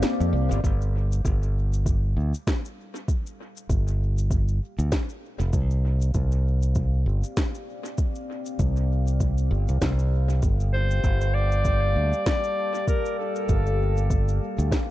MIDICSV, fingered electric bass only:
0, 0, Header, 1, 2, 480
1, 0, Start_track
1, 0, Key_signature, -2, "minor"
1, 0, Tempo, 612245
1, 499, Time_signature, 4, 2, 24, 8
1, 11687, End_track
2, 0, Start_track
2, 0, Title_t, "Fingered electric bass"
2, 0, Program_c, 0, 33
2, 159, Note_on_c, 0, 41, 87
2, 248, Note_off_c, 0, 41, 0
2, 257, Note_on_c, 0, 36, 97
2, 379, Note_off_c, 0, 36, 0
2, 399, Note_on_c, 0, 31, 96
2, 488, Note_off_c, 0, 31, 0
2, 499, Note_on_c, 0, 31, 92
2, 959, Note_off_c, 0, 31, 0
2, 977, Note_on_c, 0, 31, 79
2, 1678, Note_off_c, 0, 31, 0
2, 1699, Note_on_c, 0, 38, 73
2, 1819, Note_off_c, 0, 38, 0
2, 2896, Note_on_c, 0, 31, 75
2, 3597, Note_off_c, 0, 31, 0
2, 3752, Note_on_c, 0, 38, 83
2, 3844, Note_off_c, 0, 38, 0
2, 4230, Note_on_c, 0, 29, 89
2, 4323, Note_off_c, 0, 29, 0
2, 4338, Note_on_c, 0, 36, 91
2, 4798, Note_off_c, 0, 36, 0
2, 4817, Note_on_c, 0, 36, 77
2, 5518, Note_off_c, 0, 36, 0
2, 5536, Note_on_c, 0, 31, 74
2, 5658, Note_off_c, 0, 31, 0
2, 6738, Note_on_c, 0, 36, 78
2, 7439, Note_off_c, 0, 36, 0
2, 7454, Note_on_c, 0, 31, 88
2, 7577, Note_off_c, 0, 31, 0
2, 7595, Note_on_c, 0, 36, 95
2, 7686, Note_off_c, 0, 36, 0
2, 7696, Note_on_c, 0, 36, 88
2, 8157, Note_off_c, 0, 36, 0
2, 8174, Note_on_c, 0, 31, 91
2, 8636, Note_off_c, 0, 31, 0
2, 8654, Note_on_c, 0, 31, 80
2, 9356, Note_off_c, 0, 31, 0
2, 9374, Note_on_c, 0, 38, 73
2, 9497, Note_off_c, 0, 38, 0
2, 10577, Note_on_c, 0, 31, 82
2, 11278, Note_off_c, 0, 31, 0
2, 11433, Note_on_c, 0, 38, 89
2, 11525, Note_off_c, 0, 38, 0
2, 11687, End_track
0, 0, End_of_file